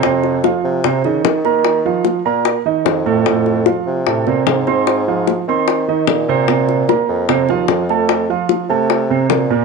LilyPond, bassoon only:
\new Staff \with { instrumentName = "Bassoon" } { \clef bass \time 4/4 \key f \phrygian \tempo 4 = 149 f,4. c4 des8 ees4~ | ees4. bes,4 r8 f,4~ | f,4. c4 bes,8 aes,4~ | aes,4. ees4. bes,4~ |
bes,4. f,4 ees,8 f,4~ | f,4 r8 c4. bes,4 | }